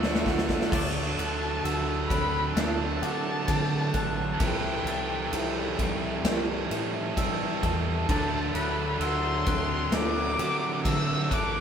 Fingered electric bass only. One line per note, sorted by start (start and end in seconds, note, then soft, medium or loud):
0.00 0.53 D2 loud
0.72 1.14 D2 medium
1.19 1.61 D2 medium
1.64 2.06 D2 medium
2.10 2.52 D2 medium
2.56 2.98 D2 medium
3.02 3.45 C3 loud
3.48 3.91 D3 loud
3.94 4.37 A1 medium
4.40 4.83 C2 loud
4.85 5.28 C2 medium
5.33 5.75 C2 loud
5.79 6.21 C2 medium
6.24 6.67 C2 medium
6.71 7.13 A2 loud
7.18 7.59 C3 loud
7.63 8.05 E2 medium
8.09 8.51 D2 loud
8.54 8.97 D2 loud
9.00 9.43 D2 medium
9.47 9.89 D2 medium
9.92 10.35 D2 loud
10.39 10.81 C3 loud
10.85 11.27 D3 loud
11.31 11.60 A1 medium